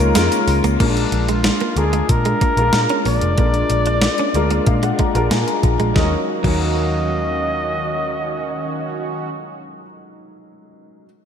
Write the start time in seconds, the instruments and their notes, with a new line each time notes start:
Already playing: french horn section C#3 G#3 A#3 D#4 F4, grand piano G#3 A#3 C#4 F4 A#4, flugelhorn A#4
0.00 picked electric bass C#2, closed hi-hat, shaker
0.15 picked electric bass F2, grand piano G#3 A#3 C#4 F4 A#4, clean electric guitar G#3, snare, closed hi-hat, tambourine, shaker
0.32 closed hi-hat, shaker
0.48 picked electric bass C#2, muted clean electric guitar stroke, open hi-hat
0.64 picked electric bass C#2, clean electric guitar A#3, closed hi-hat, shaker
0.80 picked electric bass A#1, grand piano G#3 D4 F4 A#4, french horn section G#3 A#3 D4, clean electric guitar A#3, flugelhorn D4, kick, closed hi-hat, crash
0.97 closed hi-hat
1.12 picked electric bass A#1, muted clean electric guitar stroke, closed hi-hat
1.28 clean electric guitar G#3, flugelhorn F4, closed hi-hat
1.44 snare, closed hi-hat
1.60 clean electric guitar A#3, closed hi-hat
1.76 picked electric bass D2, grand piano G#3 D4 F4 A#4, flugelhorn G#4, muted clean electric guitar stroke, closed hi-hat
1.93 clean electric guitar G#3, closed hi-hat
2.09 picked electric bass A#2, flugelhorn A#4, muted clean electric guitar stroke, kick, closed hi-hat
2.25 clean electric guitar G#3, closed hi-hat
2.41 clean electric guitar A#3, kick, closed hi-hat
2.57 picked electric bass A#1, grand piano G#3 D4 F4 A#4, closed hi-hat
2.73 picked electric bass A#2, muted clean electric guitar stroke, snare, closed hi-hat
2.89 clean electric guitar C#4, closed hi-hat
3.05 picked electric bass A#1, clean electric guitar A#3, flugelhorn D5, open hi-hat
3.21 picked electric bass F1, closed hi-hat
3.38 picked electric bass A#1, grand piano G#3 D4 F4 A#4, clean electric guitar A#3, kick, closed hi-hat
3.54 closed hi-hat
3.70 picked electric bass A#1, muted clean electric guitar stroke, closed hi-hat
3.86 clean electric guitar D4, closed hi-hat
4.01 snare, closed hi-hat
4.18 clean electric guitar C#4, closed hi-hat
4.34 picked electric bass D2, grand piano G#3 D4 F4 A#4 D5, muted clean electric guitar stroke, closed hi-hat
4.50 clean electric guitar A#3, closed hi-hat
4.67 picked electric bass A#2, grand piano F5, muted clean electric guitar stroke, kick, closed hi-hat
4.83 clean electric guitar G#3, grand piano F#5, closed hi-hat
4.99 clean electric guitar G#3, grand piano A#5, kick, closed hi-hat
5.15 picked electric bass A#1, grand piano G#3 D4 F4 A#4, closed hi-hat
5.31 picked electric bass A#2, clean electric guitar A#3, grand piano G#5, snare, closed hi-hat
5.48 grand piano A#5, closed hi-hat
5.63 picked electric bass A#1, grand piano A#5, muted clean electric guitar stroke, kick, closed hi-hat
5.80 picked electric bass A#1, clean electric guitar G#3, closed hi-hat
5.93 picked electric bass D#2, french horn section D#3 A#3 C#4 F#4 F5, analog polysynth D#3 C#4 F#4, grand piano F#3 C#4 D#4, clean electric guitar F#3, flugelhorn D#5, kick, snare
5.98 grand piano A#4
6.41 picked electric bass D#2, analog polysynth D#3 C#4 F#4, grand piano F#3 C#4 D#4, clean electric guitar F#3, flugelhorn D#5, kick, crash
6.46 grand piano A#4